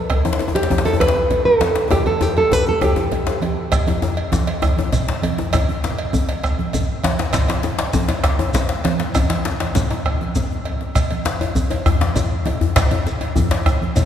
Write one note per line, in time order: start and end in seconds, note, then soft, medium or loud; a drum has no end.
0.10 bombo rim medium
0.10 bombo low loud
0.10 cowbell medium
0.10 djembe slap soft
0.10 low conga medium
0.10 djembe bass medium
0.25 cowbell soft
0.25 djembe tone medium
0.25 high conga medium
0.25 djembe tone medium
0.33 djembe slap medium
0.39 djembe slap medium
0.39 djembe tone medium
0.48 djembe tone medium
0.55 0.83 G4 medium
0.55 cowbell soft
0.55 djembe slap medium
0.63 djembe slap medium
0.70 bombo rim soft
0.70 high conga medium
0.70 djembe tone medium
0.70 low conga medium
0.70 djembe bass medium
0.78 djembe slap medium
0.85 1.00 A4 medium
0.85 bombo rim soft
0.85 cowbell soft
0.85 djembe slap medium
0.85 djembe tone medium
0.93 djembe tone medium
1.00 1.42 B4 medium
1.00 bombo rim medium
1.00 bombo low medium
1.00 cowbell soft
1.00 djembe slap medium
1.08 djembe slap medium
1.16 djembe slap soft
1.16 djembe tone medium
1.16 high conga medium
1.31 cowbell soft
1.31 djembe slap medium
1.31 djembe bass medium
1.31 low conga medium
1.45 1.88 A4 medium
1.60 bombo rim soft
1.60 cowbell soft
1.60 djembe slap medium
1.60 high conga medium
1.60 djembe tone medium
1.75 djembe slap medium
1.91 2.06 G4 medium
1.91 bombo rim medium
1.91 bombo low medium
1.91 cowbell medium
1.91 djembe slap soft
1.91 djembe tone loud
1.91 low conga medium
1.91 djembe bass medium
2.06 2.22 A4 medium
2.06 cowbell soft
2.06 djembe slap soft
2.06 high conga medium
2.06 djembe tone medium
2.21 2.37 G4 medium
2.21 bombo rim soft
2.21 djembe slap medium
2.21 djembe tone loud
2.37 2.53 A4 medium
2.37 cowbell soft
2.51 2.67 B4 medium
2.51 bombo rim soft
2.51 djembe slap soft
2.51 high conga medium
2.51 djembe tone medium
2.51 low conga medium
2.51 djembe bass medium
2.67 2.82 A4 medium
2.67 bombo rim soft
2.67 djembe slap medium
2.81 3.39 G4 medium
2.81 bombo rim medium
2.81 bombo low medium
2.81 cowbell soft
2.81 djembe slap soft
2.81 djembe tone medium
2.96 djembe slap soft
2.96 djembe tone medium
2.96 high conga medium
2.96 djembe tone medium
3.11 cowbell soft
3.11 djembe slap medium
3.11 low conga medium
3.11 djembe bass medium
3.27 bombo rim soft
3.27 djembe slap medium
3.27 djembe slap soft
3.41 cowbell soft
3.41 high conga medium
3.41 djembe tone medium
3.57 bombo rim soft
3.71 bombo rim loud
3.71 bombo low loud
3.71 cowbell medium
3.71 djembe slap soft
3.71 low conga medium
3.71 djembe bass medium
3.71 shekere medium
3.86 cowbell soft
3.86 high conga medium
3.86 djembe tone medium
4.02 djembe slap medium
4.02 djembe tone medium
4.02 shekere soft
4.17 cowbell medium
4.32 bombo rim soft
4.32 djembe slap medium
4.32 high conga medium
4.32 djembe tone medium
4.32 low conga medium
4.32 djembe bass medium
4.32 shekere medium
4.47 bombo rim soft
4.47 cowbell medium
4.47 djembe slap medium
4.62 bombo rim medium
4.62 bombo low loud
4.62 cowbell medium
4.62 djembe tone medium
4.62 shekere soft
4.77 djembe slap soft
4.77 high conga medium
4.77 djembe tone medium
4.92 cowbell medium
4.92 djembe slap medium
4.92 djembe bass medium
4.92 low conga medium
4.92 shekere medium
5.08 djembe slap medium
5.22 bombo rim soft
5.22 cowbell medium
5.22 high conga medium
5.22 djembe tone medium
5.38 djembe slap medium
5.38 djembe tone medium
5.53 bombo rim medium
5.53 bombo low loud
5.53 cowbell medium
5.53 djembe slap soft
5.53 djembe tone medium
5.53 low conga medium
5.53 djembe bass medium
5.53 shekere medium
5.69 high conga medium
5.69 djembe tone medium
5.84 djembe slap medium
5.84 shekere soft
5.99 cowbell medium
6.13 bombo rim soft
6.13 high conga medium
6.13 djembe tone medium
6.13 low conga medium
6.13 djembe bass medium
6.13 shekere medium
6.29 bombo rim soft
6.29 cowbell medium
6.29 djembe slap medium
6.44 bombo rim medium
6.44 bombo low medium
6.44 cowbell medium
6.44 shekere soft
6.59 djembe slap soft
6.59 high conga medium
6.59 djembe tone medium
6.73 cowbell medium
6.73 djembe slap medium
6.73 low conga medium
6.73 djembe bass medium
6.73 shekere medium
7.03 bombo rim soft
7.03 cowbell medium
7.03 djembe slap loud
7.03 high conga medium
7.03 djembe tone medium
7.19 djembe slap medium
7.33 bombo rim medium
7.33 bombo low medium
7.33 cowbell medium
7.33 djembe slap soft
7.33 djembe slap medium
7.33 low conga medium
7.33 djembe bass medium
7.33 shekere medium
7.48 cowbell soft
7.48 djembe slap medium
7.48 high conga medium
7.48 djembe tone medium
7.63 djembe slap medium
7.63 djembe tone medium
7.63 shekere soft
7.79 cowbell soft
7.79 djembe slap loud
7.93 bombo rim soft
7.93 djembe slap medium
7.93 high conga medium
7.93 djembe tone medium
7.93 low conga medium
7.93 djembe bass medium
7.93 shekere medium
8.08 bombo rim soft
8.08 cowbell soft
8.08 djembe slap medium
8.24 bombo rim loud
8.24 bombo low medium
8.24 cowbell medium
8.24 djembe slap medium
8.24 shekere soft
8.39 djembe slap soft
8.39 djembe tone medium
8.39 high conga medium
8.39 djembe tone medium
8.54 cowbell soft
8.54 djembe slap medium
8.54 djembe bass medium
8.54 low conga medium
8.54 shekere medium
8.69 djembe slap medium
8.84 bombo rim soft
8.84 cowbell soft
8.84 djembe slap medium
8.84 high conga medium
8.84 djembe tone medium
9.00 djembe slap medium
9.15 bombo rim medium
9.15 bombo low loud
9.15 cowbell medium
9.15 djembe tone medium
9.15 low conga medium
9.15 djembe bass medium
9.15 shekere medium
9.30 bombo rim soft
9.30 cowbell soft
9.30 djembe slap medium
9.30 high conga medium
9.45 bombo rim soft
9.45 djembe slap medium
9.60 cowbell soft
9.60 djembe slap medium
9.60 high conga soft
9.75 djembe slap medium
9.75 djembe slap soft
9.75 high conga medium
9.75 djembe tone medium
9.75 low conga medium
9.75 djembe bass medium
9.75 shekere medium
9.91 bombo rim soft
9.91 cowbell soft
9.91 djembe slap medium
9.91 djembe tone medium
10.06 bombo rim medium
10.06 bombo low medium
10.06 cowbell soft
10.06 djembe slap soft
10.21 bombo rim soft
10.21 djembe slap soft
10.21 high conga medium
10.21 djembe tone medium
10.35 djembe slap medium
10.35 djembe bass medium
10.35 low conga medium
10.35 shekere medium
10.51 djembe bass soft
10.65 bombo rim soft
10.65 cowbell soft
10.65 djembe slap soft
10.81 djembe slap medium
10.95 bombo rim medium
10.95 bombo low medium
10.95 cowbell medium
10.95 djembe slap soft
10.95 djembe bass medium
10.95 low conga medium
10.95 shekere medium
11.11 cowbell soft
11.11 djembe tone medium
11.11 high conga medium
11.25 djembe slap medium
11.25 djembe slap loud
11.25 shekere soft
11.41 cowbell soft
11.41 djembe tone medium
11.55 bombo rim soft
11.55 djembe tone medium
11.55 high conga medium
11.55 djembe bass medium
11.55 low conga medium
11.55 shekere medium
11.70 bombo rim soft
11.70 cowbell medium
11.70 djembe slap medium
11.70 djembe tone medium
11.86 bombo rim loud
11.86 bombo low loud
11.86 cowbell soft
11.86 djembe bass medium
11.86 shekere soft
12.01 djembe slap soft
12.01 djembe slap medium
12.01 djembe tone medium
12.01 high conga medium
12.16 cowbell soft
12.16 djembe slap medium
12.16 djembe tone medium
12.16 djembe bass medium
12.16 low conga medium
12.16 shekere medium
12.45 bombo rim soft
12.45 cowbell soft
12.45 high conga medium
12.45 djembe tone medium
12.61 djembe slap medium
12.61 djembe bass medium
12.76 bombo rim loud
12.76 bombo low loud
12.76 cowbell medium
12.76 djembe slap loud
12.76 djembe slap soft
12.76 djembe bass medium
12.76 low conga medium
12.76 shekere medium
12.91 cowbell soft
12.91 high conga medium
12.91 djembe tone medium
13.07 djembe slap medium
13.07 shekere soft
13.21 cowbell soft
13.21 djembe tone medium
13.36 bombo rim soft
13.36 high conga medium
13.36 djembe tone medium
13.36 djembe bass medium
13.36 low conga medium
13.36 djembe bass medium
13.36 shekere medium
13.51 bombo rim soft
13.51 cowbell medium
13.51 djembe slap loud
13.51 djembe slap medium
13.66 bombo rim loud
13.66 bombo low loud
13.66 cowbell soft
13.66 djembe tone medium
13.66 shekere soft
13.82 djembe slap soft
13.82 high conga medium
13.82 djembe tone medium
13.96 cowbell soft
13.96 djembe slap medium
13.96 djembe tone medium
13.96 low conga medium
13.96 djembe bass medium
13.96 shekere medium